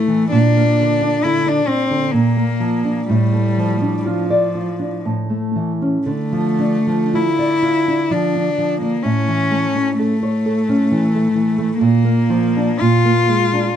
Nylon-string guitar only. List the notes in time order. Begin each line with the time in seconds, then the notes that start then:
Already playing: A2 A3
0.08 E3
0.32 A#2
0.57 A#3
0.81 D3
1.02 D4
1.25 D3
1.46 D5
1.68 D4
1.91 D3
2.14 A#2
2.37 A#3
2.60 F3
2.85 D4
3.10 A2
3.33 A3
3.58 F3
3.82 D4
4.06 F4
4.30 D5
4.55 F4
4.79 D4
5.05 A2
5.30 A3
5.56 E3
5.82 C#4
6.06 D3
6.32 F3
6.59 D4
6.87 F3
7.13 F4
7.39 D5
7.62 F4
7.88 D4
8.11 F3
8.35 D4
8.58 F3
8.81 D4
9.05 A2
9.28 E3
9.51 A3
9.75 C#4
9.99 A4
10.23 C#5
10.46 A4
10.69 C#4
10.92 E3
11.15 A3
11.35 E3
11.58 A3
11.81 A#2
12.04 A#3
12.30 F3
12.57 D4
12.81 A#2
13.05 A#3
13.29 G#3
13.53 D4